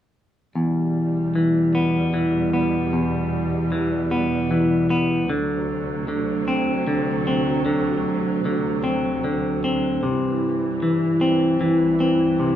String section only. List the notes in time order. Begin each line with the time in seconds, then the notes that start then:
0.56 E2 B2 G3
5.33 D2 C3 F#3
10.04 C2 G2 E3